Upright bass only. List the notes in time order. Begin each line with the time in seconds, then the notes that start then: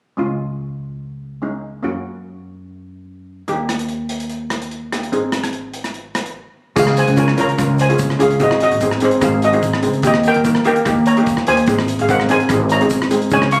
0.18 C#2
1.84 F#2
3.48 D#2
5.12 G#1
6.76 C#2
7.08 C#2
7.39 C#2
7.58 C#2
7.99 C#2
8.19 C#2
8.40 G#1
8.72 G#1
9.02 G#1
9.22 G#1
9.62 G#1
9.84 C#2
10.04 D#2
10.36 D#2
10.65 D#2
10.86 D#2
11.27 D#2
11.48 D#2
11.68 G#1
11.99 G#1
12.30 G#1
12.50 G#1
12.91 G#1
13.11 G#2
13.32 C#2